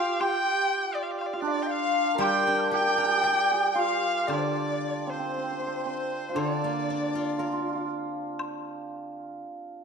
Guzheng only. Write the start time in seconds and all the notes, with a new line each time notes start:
2.18 G3
2.47 D4
2.71 G4
2.98 A#4
3.23 D5
4.28 D3
6.36 D3
6.64 A#3
6.90 D4
7.15 F4
7.39 A#4